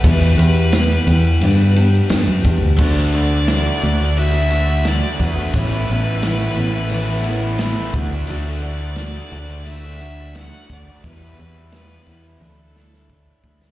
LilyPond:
<<
  \new Staff \with { instrumentName = "Fiddle" } { \time 4/4 \key d \major \tempo 4 = 87 b'2.~ b'8 r8 | d''2 e''4 d''8 b'8~ | b'2.~ b'8 r8 | d''2 e''4 fis''8 d''8 |
b'4 b'8 b'8 a'4. r8 | }
  \new Staff \with { instrumentName = "Overdriven electric guitar" } { \time 4/4 \key d \major r1 | <d a d' fis'>16 <a d' fis'>16 <d a d' fis'>8 <d a d' fis'>8 <d a d' fis'>16 <a d' fis'>8 <a d' fis'>16 <d a d' fis'>16 <a d' fis'>16 <d a d' fis'>8 <d a d' fis'>16 <a d' fis'>16 | <a, e a b e'>16 <a b e'>16 <e a b e'>8 <a, e a b e'>8 <e a b e'>16 <a b e'>8 <a b e'>16 <e a b e'>16 <a b e'>16 <a, e a b e'>8 <d a d' fis'>16 <a d' fis'>16 | <d a d' fis'>16 <a d' fis'>16 <d a d' fis'>8 <d a d' fis'>8 <d a d' fis'>16 <a d' fis'>8 <a d' fis'>16 <d a d' fis'>16 <a d' fis'>16 <d a d' fis'>8 <d a d' fis'>16 <a d' fis'>16 |
<e, b, e g b e'>16 <e g b e'>16 <e g b e'>8 <e, b, e g b e'>8 <e g b e'>16 <e g b e'>16 <d a d' e'>16 <a d' e'>16 <d a d' e'>16 <a d' e'>16 <d a d' e'>8 <d a d' e'>16 <a d' e'>16 | }
  \new Staff \with { instrumentName = "Steel-string acoustic guitar" } { \time 4/4 \key d \major <e, b, e g b g'>8 <e g b g'>8 <e g b g'>8 <e g b g'>8 <g, d g b d' g'>8 <g b d' g'>8 <g b d' g'>8 <g b d' g'>8 | <d a d' fis'>8 <a d' fis'>8 <d a d' fis'>8 <a d' fis'>8 <d a d' fis'>8 <a d' fis'>8 <d a d' fis'>8 <a d' fis'>8 | <a, e a b e'>8 <a b e'>8 <e a b e'>8 <a b e'>8 <a, e a b e'>8 <a b e'>8 <e a b e'>8 <a d' fis'>8 | <d a d' fis'>8 <a d' fis'>8 <d a d' fis'>8 <a d' fis'>8 <d a d' fis'>8 <a d' fis'>8 <d a d' fis'>8 <a d' fis'>8 |
<e, b, e g b e'>8 <e g b e'>8 <e g b e'>8 <e g b e'>8 <d a d' e'>8 <a d' e'>8 <d a d' e'>8 <a d' e'>8 | }
  \new Staff \with { instrumentName = "Fingered electric bass" } { \clef bass \time 4/4 \key d \major e,8 e,4 e,8 g,4 g,16 fis,16 e,16 d,16 | d,4. d,2 e,16 r16 | a,,8 a,,4 a,,2 d,8 | d,4. d,2 d,16 r16 |
e,8 e,4 e,8 d,4. d,8 | }
  \new DrumStaff \with { instrumentName = "Drums" } \drummode { \time 4/4 <bd cymr>8 cymr8 <cymr sn>8 cymr8 cymr8 cymr8 <cymr sn>8 <bd cymr>8 | <cymc bd>8 cymr8 <cymr sn>8 cymr8 cymr8 cymr8 <cymr sn>8 <bd cymr>8 | <bd cymr>8 cymr8 <cymr sn>8 cymr8 cymr8 cymr8 <cymr sn>8 <bd cymr>8 | cymr8 cymr8 <cymr sn>8 cymr8 cymr8 cymr8 <cymr sn>8 <bd cymr>8 |
<bd cymr>8 cymr8 <cymr sn>8 cymr8 tommh8 sn16 sn16 bd8 bd16 sn16 | }
>>